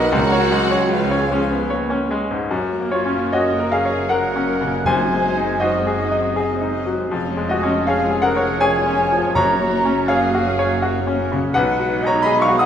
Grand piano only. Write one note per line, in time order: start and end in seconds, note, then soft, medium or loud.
0.00 0.11 B1 medium
0.00 0.17 B3 medium
0.00 0.17 D#5 medium
0.12 2.46 C#2 medium
0.32 0.64 C#5 medium
0.52 0.84 G#3 medium
0.71 1.04 C#5 medium
0.92 1.12 B4 soft
1.11 1.43 C#5 medium
1.32 1.63 C#4 medium
1.50 1.70 B3 soft
1.70 2.02 C#5 medium
1.90 2.22 C#4 medium
2.11 2.43 G#3 medium
2.31 2.51 G#2 medium
2.51 4.81 F#2 medium
2.80 3.22 A#3 soft
2.92 3.30 F4 soft
2.92 3.29 C#5 medium
3.06 3.48 C#4 soft
3.33 3.70 F#4 medium
3.33 3.74 C#5 soft
3.33 3.69 D#5 medium
3.59 4.00 A#4 medium
3.72 4.07 G#4 medium
3.72 4.07 F5 medium
3.85 4.25 C#5 soft
4.09 4.82 A#4 medium
4.09 4.81 F#5 medium
4.36 4.76 C#4 soft
4.61 4.86 C#3 soft
4.86 7.07 F#2 medium
4.86 5.57 C5 medium
4.86 5.56 G#5 medium
5.13 5.51 G#3 soft
5.37 5.76 D#4 medium
5.60 6.69 F#4 soft
5.60 6.01 C5 soft
5.60 6.10 D#5 medium
5.87 6.26 G#4 soft
6.11 6.51 D#5 medium
6.36 6.76 G#4 medium
6.61 7.01 D#4 medium
6.86 7.11 F#3 medium
7.11 9.32 F2 medium
7.37 7.77 G#3 soft
7.49 7.85 F#4 medium
7.49 7.84 D#5 medium
7.63 8.02 C#4 medium
7.87 8.09 G#4 soft
7.87 8.26 C#5 soft
7.87 8.21 F5 medium
8.11 8.50 G#4 medium
8.22 8.57 A#4 medium
8.22 8.57 F#5 medium
8.37 8.59 C#5 medium
8.61 9.01 G#4 medium
8.61 9.32 C#5 medium
8.61 9.32 G#5 medium
8.86 9.26 C#4 medium
9.12 9.36 F3 medium
9.35 11.51 F#2 medium
9.35 10.05 C#5 medium
9.35 10.04 A#5 medium
9.62 10.00 F#3 medium
9.85 10.24 C#4 medium
10.08 11.14 G#4 medium
10.08 10.48 C#5 medium
10.08 11.14 F5 medium
10.35 10.72 F#4 medium
10.59 10.97 C#5 medium
10.82 11.21 F#4 medium
11.07 11.45 C#4 medium
11.32 11.55 C#3 medium
11.54 12.66 B1 medium
11.54 12.03 B4 medium
11.54 12.03 F#5 medium
11.79 12.15 F#3 soft
12.02 12.38 D#4 medium
12.06 12.23 C#5 medium
12.06 12.22 A#5 medium
12.22 12.61 G#4 medium
12.22 12.39 D#5 medium
12.22 12.39 B5 medium
12.42 12.57 F5 medium
12.42 12.57 C#6 medium
12.48 12.66 F#4 soft
12.59 12.66 F#5 medium
12.59 12.66 D#6 medium